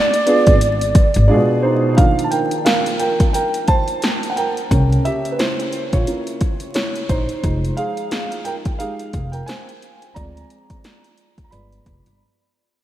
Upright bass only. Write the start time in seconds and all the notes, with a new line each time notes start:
0.47 G#1
1.16 G#1
4.71 C2
5.93 A#1
7.10 A#1
7.44 F1
9.14 F1
10.16 D2
11.38 D2
11.53 G1
11.86 F1
12.07 G1